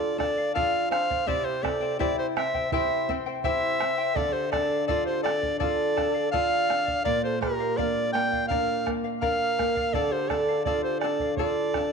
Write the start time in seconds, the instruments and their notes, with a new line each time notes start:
Already playing: nylon-string guitar D3 F4, quena A4, charango A4 D5 F5, soprano saxophone D5
0.18 nylon-string guitar D4, quena A4, charango A4 D5 F5, soprano saxophone D5, bombo rim, bombo low
0.37 charango D5 F5
0.54 nylon-string guitar F4, charango A4 D5 F5, quena D5, soprano saxophone F5, bombo low
0.89 nylon-string guitar D4, charango A4 D5 F5, quena C5, soprano saxophone F5, bombo rim
1.10 charango D5 F5, bombo low
1.27 nylon-string guitar C3, charango E4 G4 C5 E5 G5, quena G4, soprano saxophone D5, bombo low
1.45 quena G4, soprano saxophone C5
1.63 nylon-string guitar C4, charango E4 C5 E5 G5, quena A4, soprano saxophone D5, bombo rim, bombo low
1.81 charango E4 C5 G5
1.99 nylon-string guitar E4, charango E4 G4 C5 E5 G5, quena G4, soprano saxophone D5, bombo low
2.16 quena G4, soprano saxophone C5
2.33 nylon-string guitar C4, charango E4 C5 E5, quena C5, soprano saxophone E5, bombo rim
2.38 charango G5
2.54 charango E4 C5 G5, bombo low
2.71 nylon-string guitar E4, charango E4 G4 C5 E5 G5, quena C5, soprano saxophone E5, bombo low
3.09 nylon-string guitar C4, charango E4 C5 E5 G5, bombo low
3.26 charango E4 C5 G5
3.42 nylon-string guitar E4, charango E4 G4 C5 E5 G5, quena C5, soprano saxophone E5, bombo low
3.79 nylon-string guitar C4, charango E4 C5 E5 G5, bombo rim
3.98 charango E4 C5 G5
4.15 nylon-string guitar D3, quena A4, charango A4 D5 F5, soprano saxophone D5, bombo low
4.33 quena G4, soprano saxophone C5
4.50 nylon-string guitar D4, quena A4, charango A4 D5 F5, soprano saxophone D5, bombo rim, bombo low
4.69 charango D5 F5
4.87 nylon-string guitar F4, quena A4, charango A4 D5 F5, soprano saxophone D5, bombo low
5.06 quena G4, soprano saxophone C5
5.22 nylon-string guitar D4, quena A4, charango A4 D5 F5, soprano saxophone D5, bombo rim
5.42 charango D5 F5, bombo low
5.59 nylon-string guitar F4, quena A4, charango A4 D5 F5, soprano saxophone D5, bombo low
5.96 nylon-string guitar D4, charango A4 D5 F5, bombo rim, bombo low
6.14 charango D5 F5
6.32 nylon-string guitar F4, charango A4 D5 F5, quena D5, soprano saxophone F5, bombo low
6.69 nylon-string guitar D4, charango A4 D5 F5, bombo rim
6.87 charango D5 F5, bombo low
7.04 nylon-string guitar A#2, quena A#4, charango A#4 D5 F5, soprano saxophone D5, bombo low
7.23 quena A4, soprano saxophone C5
7.40 nylon-string guitar A#3, quena G4, soprano saxophone A#4, charango A#4 D5 F5, bombo rim, bombo low
7.60 charango D5 F5
7.76 nylon-string guitar D4, quena A#4, charango A#4 D5 F5, soprano saxophone D5, bombo low
8.13 nylon-string guitar A#3, charango A#4 D5 F5, quena D5, soprano saxophone G5, bombo rim
8.32 charango D5 F5, bombo low
8.48 nylon-string guitar D4, quena A#4, charango A#4 D5 F5, soprano saxophone F5, bombo low
8.86 nylon-string guitar A#3, charango A#4 D5 F5, bombo rim, bombo low
9.04 charango D5 F5
9.21 nylon-string guitar D4, quena A#4, charango A#4 D5 F5, soprano saxophone F5, bombo low
9.58 nylon-string guitar A#3, charango A#4 D5 F5, bombo rim, bombo low
9.76 charango D5 F5, bombo low
9.93 nylon-string guitar D3, quena A4, charango A4 D5 F5, soprano saxophone D5, bombo low
10.11 quena G4, soprano saxophone C5
10.29 nylon-string guitar D4, quena A4, charango A4 D5 F5, soprano saxophone D5, bombo rim, bombo low
10.48 charango D5 F5
10.64 nylon-string guitar F4, quena A4, charango A4 D5 F5, soprano saxophone D5, bombo low
10.82 quena G4, soprano saxophone C5
11.00 nylon-string guitar D4, quena A4, charango A4, soprano saxophone D5, bombo rim
11.04 charango D5 F5
11.19 charango D5 F5, bombo low
11.36 nylon-string guitar F4, quena A4, charango A4 D5, soprano saxophone D5, bombo low
11.40 charango F5
11.74 nylon-string guitar D4, charango A4 D5 F5, bombo rim, bombo low